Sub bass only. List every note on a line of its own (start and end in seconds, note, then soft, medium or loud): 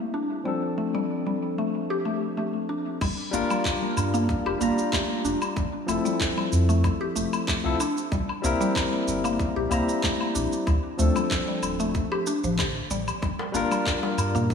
3.01 3.12 G1 medium
3.33 3.44 G1 medium
3.97 4.36 G2 medium
4.46 4.55 F1 medium
4.61 4.71 G1 loud
5.25 5.35 F1 loud
5.57 5.67 F1 loud
5.89 5.99 F1 medium
6.52 6.91 F2 medium
7.16 7.27 F1 medium
7.65 7.74 C2 loud
8.12 8.22 C2 loud
8.44 8.54 C2 medium
9.08 9.46 G1 medium
9.56 9.66 A#1 medium
9.71 9.82 C2 loud
10.36 10.46 A#1 medium
10.67 10.78 D2 loud
10.99 11.09 D2 medium
11.63 12.01 D1 medium
12.44 12.81 A1 loud
12.90 13.11 A1 medium
13.23 13.33 G1 loud
13.54 13.65 G1 medium
14.18 14.54 G2 medium